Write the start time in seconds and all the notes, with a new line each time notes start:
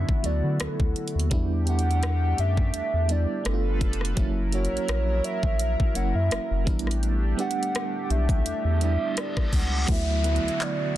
Already playing: D3 F#3 A3 B3 E4 F#4 E5
0.09 kick
0.22 D2 F#3 A3 B3 E4 D5, closed hi-hat
0.44 D3
0.60 D2 A4, cross-stick, closed hi-hat
0.80 D2, kick
0.96 closed hi-hat
1.08 closed hi-hat
1.15 D#2
1.20 closed hi-hat
1.30 E2 G3 A3 B3 D4 E4 G4, kick, closed hi-hat
1.65 B3 D4 E4 G4 F#5, closed hi-hat
1.79 closed hi-hat
1.91 closed hi-hat
2.03 cross-stick, closed hi-hat
2.38 F#2 E5, closed hi-hat
2.57 kick
2.74 E2, closed hi-hat
2.94 E2
3.08 G3 B3 D4 E4 D5, closed hi-hat
3.44 G1 G3 A3 B3 D4 E4 F4 A4 B4, cross-stick, closed hi-hat
3.54 F4
3.81 F1, kick, closed hi-hat
3.93 closed hi-hat
4.01 cross-stick, closed hi-hat
4.16 F#1 F#3 A#3 C#4 E4 A#4, kick, closed hi-hat
4.51 F#3 A#3 C#4 F#4 C#5, closed hi-hat
4.65 closed hi-hat
4.72 A#1
4.77 closed hi-hat
4.88 A#1, cross-stick, closed hi-hat
5.24 E5, closed hi-hat
5.43 A#1, kick
5.59 closed hi-hat
5.80 kick
5.94 F#1 F#3 A#3 C#4 E4 F#5, closed hi-hat
6.15 F#2 E5
6.31 F#1, cross-stick, closed hi-hat
6.51 F#1
6.65 A1 G3 A3 B3 D4 E4 G4, kick, closed hi-hat
6.79 closed hi-hat
6.87 cross-stick, closed hi-hat
7.03 closed hi-hat
7.37 G3 B3 D4 G4 F#5, closed hi-hat
7.51 closed hi-hat
7.63 closed hi-hat
7.75 cross-stick, closed hi-hat
8.05 F#5
8.10 B1 E5, closed hi-hat
8.29 kick, closed hi-hat
8.45 E2, closed hi-hat, reverse cymbal
8.65 E2
8.80 G3 B3 D4 E4 E5, closed hi-hat
9.17 D5, cross-stick, closed hi-hat
9.37 kick, cross-stick
9.53 C#2 F#5, kick, open hi-hat
9.87 D2 D3 F#3 A3 B3 E4 F#4, kick, closed hi-hat, crash, downlifter
9.91 E5
10.22 F#3 A3 B3 E4, closed hi-hat
10.36 closed hi-hat
10.44 D2
10.48 closed hi-hat
10.60 D5, clap, closed hi-hat